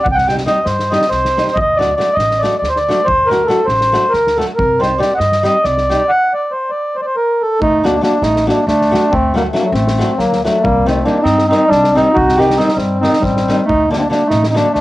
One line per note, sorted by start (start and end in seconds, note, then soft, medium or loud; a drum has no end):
0.04 0.42 C2 medium
0.04 0.07 F#5 medium
0.04 kick loud
0.12 0.27 F#5 loud
0.12 0.18 G5 medium
0.18 snare soft
0.28 0.39 G3 soft
0.28 0.40 C4 soft
0.28 0.40 D#4 soft
0.28 0.40 G4 medium
0.28 0.36 G5 medium
0.28 snare soft
0.38 snare soft
0.46 0.58 G3 medium
0.46 0.58 C4 medium
0.46 0.58 D#4 soft
0.46 0.58 G4 medium
0.46 0.67 D#5 medium
0.46 snare soft
0.65 0.93 G2 medium
0.65 0.92 C5 medium
0.65 snare soft
0.79 snare soft
0.90 1.03 G3 medium
0.90 1.03 C4 medium
0.90 1.04 D#4 medium
0.90 1.04 G4 medium
0.90 1.09 D#5 medium
0.90 snare soft
1.02 snare soft
1.09 1.38 C2 medium
1.09 1.57 C5 medium
1.09 snare soft
1.25 snare soft
1.37 1.48 G3 soft
1.37 1.48 C4 medium
1.37 1.49 D#4 medium
1.37 1.49 G4 medium
1.37 snare soft
1.48 snare soft
1.54 1.92 D2 medium
1.54 1.59 D#5 medium
1.54 kick loud
1.61 1.78 D#5 medium
1.76 1.90 F#3 medium
1.76 1.90 A3 soft
1.76 1.90 D4 soft
1.76 1.94 D5 medium
1.81 1.91 F#4 medium
1.81 snare soft
1.96 2.09 F#3 soft
1.96 2.09 A3 soft
1.96 2.09 D4 medium
1.96 2.09 F#4 medium
1.96 2.16 D5 medium
2.00 snare soft
2.13 2.44 A1 medium
2.13 2.42 D#5 medium
2.19 snare soft
2.31 snare soft
2.39 2.53 F#3 medium
2.39 2.54 A3 medium
2.39 2.56 D5 medium
2.43 2.54 D4 medium
2.43 2.54 F#4 medium
2.43 snare soft
2.58 2.69 D5 medium
2.62 2.89 D2 medium
2.62 snare soft
2.69 2.78 C5 medium
2.76 3.07 D5 medium
2.76 snare soft
2.88 2.99 F#3 medium
2.88 2.99 A3 medium
2.88 3.00 D4 medium
2.88 3.00 F#4 medium
2.88 snare soft
3.04 3.43 D2 medium
3.04 3.30 C5 loud
3.04 kick medium
3.27 3.41 F#3 medium
3.27 3.48 A#4 medium
3.31 3.41 A3 soft
3.31 3.41 D4 medium
3.31 3.41 F#4 medium
3.31 snare soft
3.46 3.59 F#3 medium
3.46 3.60 A3 medium
3.46 3.60 D4 soft
3.46 3.67 A4 medium
3.50 3.60 F#4 medium
3.50 snare soft
3.66 3.95 A1 medium
3.66 4.13 C5 medium
3.66 snare soft
3.81 snare soft
3.92 4.04 F#3 medium
3.92 4.04 A3 medium
3.92 4.05 D4 medium
3.92 4.05 F#4 medium
3.92 snare soft
4.10 4.38 A#4 medium
4.14 4.41 D2 medium
4.14 snare soft
4.27 snare soft
4.37 4.49 F#3 medium
4.37 4.50 A3 medium
4.37 4.50 D4 medium
4.37 4.50 F#4 medium
4.37 4.46 A4 medium
4.37 snare soft
4.56 4.95 C2 medium
4.56 4.81 A#4 medium
4.56 kick loud
4.80 4.91 G3 medium
4.80 4.91 C4 medium
4.80 4.91 D#4 soft
4.80 4.92 G4 medium
4.80 5.00 C5 medium
4.80 snare soft
4.98 5.10 G3 medium
4.98 5.10 C4 soft
4.98 5.10 D#4 medium
4.98 5.11 G4 medium
4.98 5.14 D5 medium
4.98 snare soft
5.15 5.43 D#5 medium
5.15 5.19 F#5 medium
5.20 5.47 G2 medium
5.20 snare soft
5.32 snare soft
5.43 5.55 G3 medium
5.43 5.55 C4 soft
5.43 5.55 D#4 medium
5.43 5.56 G4 medium
5.43 5.65 D#5 medium
5.43 snare soft
5.64 5.92 C2 medium
5.64 6.11 D5 medium
5.64 snare soft
5.78 snare soft
5.89 6.01 G3 medium
5.89 6.01 C4 medium
5.89 6.01 D#4 medium
5.89 6.02 G4 medium
5.89 snare soft
6.09 6.33 F#5 loud
6.33 6.52 D5 medium
6.51 6.71 C5 medium
6.70 6.96 D5 medium
6.96 7.01 C5 medium
7.02 7.16 C5 medium
7.02 7.06 D5 medium
7.16 7.42 A#4 medium
7.42 7.60 A4 medium
7.61 7.98 D2 medium
7.61 7.82 A3 medium
7.61 7.85 D#4 loud
7.61 kick loud
7.83 7.94 F#3 soft
7.83 7.95 A3 soft
7.83 8.02 A#3 medium
7.83 8.02 D4 medium
7.83 7.95 D4 soft
7.83 7.95 F#4 medium
7.83 snare soft
8.01 8.13 F#3 medium
8.01 8.13 A3 medium
8.01 8.20 A#3 medium
8.01 8.13 D4 medium
8.01 8.22 D4 medium
8.01 8.14 F#4 medium
8.01 snare soft
8.20 8.49 A1 medium
8.20 8.45 A3 medium
8.20 8.46 D#4 medium
8.20 snare soft
8.36 snare soft
8.46 8.58 F#3 medium
8.46 8.58 A3 medium
8.46 8.65 A#3 medium
8.46 8.65 D4 medium
8.46 8.58 D4 soft
8.46 8.59 F#4 medium
8.46 snare soft
8.66 8.94 D2 medium
8.66 9.09 A3 medium
8.66 9.14 D4 medium
8.66 snare soft
8.81 snare soft
8.91 9.03 F#3 medium
8.91 9.04 A3 medium
8.91 9.03 D4 medium
8.91 9.04 F#4 medium
8.91 snare soft
9.10 9.48 D2 medium
9.10 9.33 A3 medium
9.10 9.35 C4 loud
9.10 kick loud
9.34 9.45 F#3 medium
9.34 9.44 G3 medium
9.34 9.46 A3 medium
9.34 9.43 A#3 medium
9.34 9.46 D4 medium
9.34 9.46 F#4 medium
9.34 snare soft
9.52 9.64 F#3 medium
9.52 9.58 F#3 medium
9.52 9.58 A3 medium
9.52 9.65 A3 soft
9.52 9.65 D4 medium
9.52 9.65 F#4 medium
9.52 snare soft
9.58 9.62 G3 medium
9.58 9.63 A#3 medium
9.62 9.72 F#3 medium
9.62 9.73 A3 medium
9.72 10.00 A1 loud
9.72 10.15 A3 medium
9.72 10.19 C4 medium
9.72 snare soft
9.87 snare soft
9.98 10.10 F#3 medium
9.98 10.10 A3 medium
9.98 10.10 D4 medium
9.98 10.11 F#4 medium
9.98 snare soft
10.17 10.46 D2 medium
10.17 10.42 F#3 medium
10.17 10.42 A#3 medium
10.17 snare soft
10.32 snare soft
10.43 10.62 F#3 medium
10.43 10.56 F#3 medium
10.43 10.64 A3 medium
10.43 10.56 A3 soft
10.43 10.56 D4 medium
10.43 10.56 F#4 medium
10.43 snare soft
10.61 11.01 C2 medium
10.61 10.85 G3 medium
10.61 10.87 A#3 loud
10.61 kick loud
10.85 10.98 D#3 medium
10.85 10.98 G3 soft
10.85 11.05 A3 medium
10.85 11.06 C4 medium
10.85 10.98 C4 medium
10.85 10.99 D#4 medium
10.85 snare soft
11.04 11.17 D#3 medium
11.04 11.17 G3 soft
11.04 11.22 A#3 medium
11.04 11.17 C4 medium
11.04 11.23 D4 medium
11.04 11.17 D#4 medium
11.04 snare soft
11.22 11.53 G2 loud
11.22 11.47 C4 loud
11.22 11.46 D#4 medium
11.22 snare soft
11.38 snare soft
11.47 11.62 D#3 medium
11.47 11.62 G3 medium
11.47 11.67 C4 medium
11.47 11.70 D#4 medium
11.52 11.63 C4 medium
11.52 11.63 D#4 medium
11.52 snare soft
11.67 11.98 C2 medium
11.67 11.93 G3 medium
11.67 11.96 D4 loud
11.71 snare soft
11.84 snare soft
11.94 12.07 D#3 medium
11.94 12.07 G3 medium
11.94 12.13 C4 medium
11.94 12.08 C4 medium
11.94 12.16 D#4 medium
11.94 12.08 D#4 medium
11.94 snare soft
12.14 12.53 C2 medium
12.14 12.37 D#4 medium
12.14 12.39 F#4 loud
12.14 kick loud
12.29 snare soft
12.37 12.50 D#3 medium
12.37 12.50 G3 medium
12.37 12.50 C4 medium
12.37 12.56 D#4 medium
12.37 12.50 D#4 medium
12.37 12.58 G4 loud
12.41 snare soft
12.51 snare soft
12.56 12.69 D#3 medium
12.56 12.69 G3 medium
12.56 12.73 C4 medium
12.56 12.69 C4 medium
12.56 12.77 D#4 medium
12.56 12.69 D#4 medium
12.56 snare soft
12.69 snare soft
12.74 13.05 G2 medium
12.74 13.00 G3 medium
12.74 13.03 C4 medium
12.79 snare soft
13.01 13.14 D#3 medium
13.01 13.15 G3 medium
13.01 13.20 C4 medium
13.01 13.15 C4 medium
13.01 13.23 D#4 medium
13.01 snare soft
13.05 13.15 D#4 medium
13.13 snare soft
13.20 13.51 A1 medium
13.20 13.64 G3 medium
13.20 13.65 C4 medium
13.20 kick medium
13.20 snare soft
13.37 snare soft
13.48 13.60 D#3 medium
13.48 13.60 G3 medium
13.48 13.61 C4 medium
13.48 13.61 D#4 medium
13.48 snare soft
13.65 13.87 A3 medium
13.65 13.89 D#4 loud
13.69 14.06 D2 medium
13.69 kick loud
13.88 14.02 D3 medium
13.88 14.02 F#3 medium
13.88 13.94 A#3 medium
13.88 13.96 D4 medium
13.92 14.03 A3 soft
13.92 14.03 D4 medium
13.92 snare soft
13.97 13.99 A3 medium
13.97 14.08 A#3 medium
13.97 14.02 C4 medium
13.97 14.08 D4 medium
14.09 14.21 D3 medium
14.09 14.21 F#3 medium
14.09 14.21 A3 soft
14.09 14.25 A#3 medium
14.09 14.28 D4 medium
14.09 14.22 D4 medium
14.09 snare soft
14.26 14.46 A3 medium
14.26 14.47 D#4 medium
14.30 14.58 A1 loud
14.30 snare soft
14.43 snare soft
14.49 14.72 A#3 medium
14.49 14.52 C4 medium
14.49 14.56 D#4 medium
14.54 14.66 D3 medium
14.54 14.67 F#3 medium
14.54 14.67 A3 medium
14.54 14.72 D4 medium
14.54 14.68 D4 medium
14.54 snare soft
14.73 14.81 D2 medium
14.73 14.81 A3 medium
14.73 14.81 D4 medium
14.73 snare soft